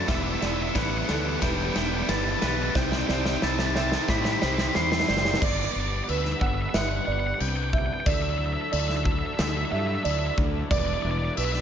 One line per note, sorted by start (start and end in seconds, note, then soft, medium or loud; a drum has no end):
0.00 0.75 E4 medium
0.00 2.71 D5 medium
0.00 0.10 A5 medium
0.07 0.35 E1 medium
0.07 0.41 E3 medium
0.07 0.41 G3 medium
0.07 2.73 B3 medium
0.07 0.41 B3 loud
0.07 5.38 E4 medium
0.07 0.42 E4 medium
0.07 2.73 G4 medium
0.07 0.42 E5 medium
0.07 0.15 E5 medium
0.07 kick loud
0.07 snare medium
0.07 ride medium
0.15 0.23 E5 medium
0.24 0.30 E5 medium
0.31 0.38 E5 medium
0.39 0.69 E1 medium
0.39 0.74 E3 medium
0.39 0.75 G3 medium
0.39 0.75 B3 medium
0.39 0.76 E4 loud
0.39 1.08 D5 medium
0.39 0.46 E5 medium
0.39 snare medium
0.39 ride medium
0.47 0.53 E5 medium
0.53 0.61 E5 medium
0.62 0.68 E5 medium
0.69 0.76 E5 medium
0.75 1.02 A1 medium
0.75 1.08 E3 medium
0.75 1.08 G3 medium
0.75 1.08 B3 medium
0.75 1.09 E4 medium
0.75 0.83 F#5 medium
0.75 kick medium
0.75 snare medium
0.75 ride medium
0.83 0.90 F#5 medium
0.90 0.97 F#5 medium
0.98 1.05 F#5 medium
1.06 1.36 D2 medium
1.06 1.41 E3 medium
1.06 1.41 G3 medium
1.06 1.41 B3 medium
1.06 1.74 D4 medium
1.06 1.42 E4 loud
1.06 1.42 A4 medium
1.06 1.13 F#5 medium
1.06 snare medium
1.06 ride medium
1.14 1.20 F#5 medium
1.21 1.28 F#5 medium
1.29 1.35 F#5 medium
1.36 1.42 F#5 medium
1.42 1.69 E1 medium
1.42 1.74 E3 medium
1.42 1.75 G3 medium
1.42 1.75 B3 medium
1.42 1.75 E4 loud
1.42 2.07 B4 medium
1.42 1.49 G5 medium
1.42 kick medium
1.42 snare medium
1.42 ride medium
1.50 1.57 G5 medium
1.58 1.65 G5 medium
1.65 1.72 G5 medium
1.73 2.02 E1 medium
1.73 2.07 E3 medium
1.73 2.08 G3 medium
1.73 2.08 B3 medium
1.73 2.76 D4 medium
1.73 2.09 E4 medium
1.73 1.80 G5 medium
1.73 snare medium
1.73 ride medium
1.81 1.87 G5 medium
1.88 1.95 G5 medium
1.95 2.02 G5 medium
2.03 2.09 G5 medium
2.09 2.35 G1 medium
2.09 2.41 E3 medium
2.09 2.42 G3 medium
2.09 2.42 B3 medium
2.09 2.42 E4 medium
2.09 2.75 B4 medium
2.09 2.16 A5 medium
2.09 snare medium
2.09 ride medium
2.17 2.24 A5 medium
2.24 2.32 A5 medium
2.32 2.39 A5 medium
2.40 2.69 B1 medium
2.40 2.73 E3 medium
2.40 2.76 G3 medium
2.40 2.74 B3 medium
2.40 2.74 E4 loud
2.40 2.75 B4 medium
2.40 2.47 A5 medium
2.40 snare medium
2.40 ride medium
2.47 2.55 A5 medium
2.56 2.63 A5 medium
2.63 2.70 A5 medium
2.70 2.76 A5 medium
2.75 3.02 C2 medium
2.75 3.08 C3 loud
2.75 3.08 G3 loud
2.75 5.39 C4 medium
2.75 3.09 C4 loud
2.75 3.09 E4 loud
2.75 5.39 G4 medium
2.75 3.09 C5 loud
2.75 5.39 E5 medium
2.75 2.83 G5 medium
2.75 kick loud
2.75 snare medium
2.83 2.91 G5 medium
2.91 2.99 G5 medium
2.91 snare medium
2.99 3.07 G5 medium
3.07 3.36 C2 medium
3.07 3.41 C3 medium
3.07 3.42 G3 medium
3.07 3.42 C4 loud
3.07 3.42 E4 loud
3.07 3.75 D5 medium
3.07 3.14 G5 medium
3.07 snare medium
3.14 3.21 G5 medium
3.21 3.29 G5 medium
3.21 snare loud
3.29 3.37 G5 medium
3.37 3.43 G5 medium
3.42 3.96 C2 medium
3.42 3.75 C3 medium
3.42 3.75 G3 medium
3.42 3.75 C4 medium
3.42 3.76 E4 loud
3.42 3.51 A5 medium
3.42 snare medium
3.51 3.58 A5 medium
3.59 3.66 A5 medium
3.59 snare loud
3.66 3.74 A5 medium
3.74 4.07 C3 medium
3.74 4.08 G3 medium
3.74 4.08 C4 medium
3.74 4.09 E4 medium
3.74 4.42 E5 medium
3.74 3.81 A5 medium
3.74 snare loud
3.81 3.89 A5 medium
3.89 3.96 A5 medium
3.89 snare loud
3.96 4.04 A5 medium
4.04 4.11 A5 medium
4.08 4.35 A2 loud
4.08 4.40 C3 loud
4.08 4.40 G3 loud
4.08 4.41 C4 loud
4.08 4.41 E4 loud
4.08 4.17 B5 loud
4.08 kick medium
4.08 snare loud
4.18 4.24 B5 medium
4.25 4.32 B5 medium
4.25 snare medium
4.32 4.40 B5 medium
4.40 4.69 C2 medium
4.40 4.73 C3 medium
4.40 4.73 G3 medium
4.40 4.74 C4 medium
4.40 4.74 E4 medium
4.40 5.08 C5 medium
4.40 4.47 B5 loud
4.40 snare loud
4.47 4.54 B5 medium
4.54 4.62 B5 medium
4.54 snare loud
4.62 4.69 B5 medium
4.69 4.75 B5 medium
4.74 5.02 E2 medium
4.74 5.06 C3 medium
4.74 5.07 G3 medium
4.74 5.07 C4 medium
4.74 5.08 E4 medium
4.74 4.82 C6 medium
4.74 snare loud
4.83 4.91 C6 medium
4.91 4.99 C6 medium
4.91 snare loud
4.99 5.06 C6 medium
4.99 snare loud
5.07 5.35 F#1 medium
5.07 5.39 C3 medium
5.07 5.39 G3 loud
5.07 5.40 C4 loud
5.07 5.40 E4 loud
5.07 5.42 C5 medium
5.07 5.40 D5 medium
5.07 5.13 C6 medium
5.07 snare loud
5.14 5.22 C6 medium
5.14 snare loud
5.23 5.30 C6 medium
5.23 snare loud
5.31 5.39 C6 medium
5.31 snare loud
5.42 5.66 G1 loud
5.42 8.04 G3 medium
5.42 8.04 B3 medium
5.42 11.61 D4 medium
5.42 8.04 B4 medium
5.42 6.08 D5 medium
5.42 5.51 D5 medium
5.42 kick loud
5.42 crash loud
5.42 crash medium
5.51 5.57 D5 medium
5.57 5.65 D5 medium
5.65 5.72 D5 medium
5.72 6.00 G1 medium
5.72 5.79 D5 medium
5.80 5.87 D5 medium
5.88 5.95 D5 medium
5.96 6.03 D5 medium
6.04 6.09 D5 medium
6.08 6.33 D2 medium
6.08 6.41 B4 medium
6.08 6.17 E5 medium
6.08 crash medium
6.18 6.24 E5 medium
6.24 6.32 E5 medium
6.24 snare soft
6.32 6.40 E5 medium
6.40 6.66 G1 medium
6.40 6.46 E5 medium
6.40 6.74 F#5 medium
6.40 kick medium
6.47 6.54 E5 medium
6.54 6.61 E5 medium
6.62 6.69 E5 medium
6.69 6.77 E5 medium
6.74 6.99 G1 loud
6.74 7.07 E5 medium
6.74 6.81 F#5 loud
6.74 snare loud
6.74 crash medium
6.82 6.89 F#5 medium
6.89 6.96 F#5 medium
6.96 7.04 F#5 medium
7.05 7.32 G1 medium
7.05 7.73 D5 medium
7.05 7.12 F#5 loud
7.12 7.19 F#5 medium
7.20 7.26 F#5 loud
7.27 7.34 F#5 medium
7.34 7.40 F#5 medium
7.40 7.89 C2 loud
7.40 7.48 G5 loud
7.40 crash medium
7.49 7.56 G5 medium
7.57 7.63 G5 loud
7.64 7.70 G5 medium
7.70 8.06 E5 medium
7.70 7.78 G5 loud
7.70 kick medium
7.78 7.86 G5 medium
7.86 7.93 G5 loud
7.94 8.00 G5 medium
8.00 8.08 G5 loud
8.06 8.55 D2 medium
8.06 10.68 F#3 medium
8.06 11.61 E4 medium
8.06 10.68 A4 medium
8.06 8.70 D5 loud
8.06 8.14 E5 loud
8.06 kick loud
8.06 crash medium
8.14 8.21 E5 medium
8.22 8.30 E5 medium
8.30 8.37 E5 medium
8.38 8.45 E5 medium
8.46 8.53 E5 medium
8.53 8.61 E5 loud
8.61 8.69 E5 medium
8.72 9.22 D2 loud
8.72 9.38 D5 medium
8.72 8.80 E5 medium
8.72 crash medium
8.80 8.87 E5 medium
8.88 8.96 E5 medium
8.88 snare soft
8.97 9.04 E5 medium
9.04 9.12 E5 medium
9.04 kick medium
9.12 9.18 E5 medium
9.19 9.26 E5 medium
9.26 9.34 E5 medium
9.34 9.41 E5 medium
9.39 9.63 D2 loud
9.39 9.49 E5 medium
9.39 snare loud
9.39 crash medium
9.49 9.57 E5 medium
9.57 9.65 E5 medium
9.65 9.71 E5 medium
9.71 9.96 G2 loud
9.71 10.05 E5 medium
9.71 9.79 E5 medium
9.79 9.87 E5 medium
9.87 9.95 E5 medium
9.95 10.03 E5 medium
10.03 10.29 D2 loud
10.03 10.69 D5 medium
10.03 10.10 E5 medium
10.03 crash medium
10.11 10.18 E5 medium
10.19 10.26 E5 medium
10.27 10.34 E5 medium
10.38 10.62 D2 loud
10.38 kick medium
10.70 10.95 E1 loud
10.70 11.61 G3 medium
10.70 11.61 B4 medium
10.70 11.37 D5 loud
10.70 10.79 D5 loud
10.70 kick loud
10.70 crash medium
10.79 10.86 D5 medium
10.86 10.94 D5 medium
10.94 11.02 D5 medium
11.02 11.28 E1 loud
11.02 11.10 D5 medium
11.11 11.18 D5 medium
11.19 11.24 D5 medium
11.25 11.32 D5 medium
11.37 11.61 B1 medium
11.37 11.61 B4 medium
11.37 11.44 E5 medium
11.37 crash medium
11.45 11.52 E5 medium
11.52 11.60 E5 medium
11.52 snare soft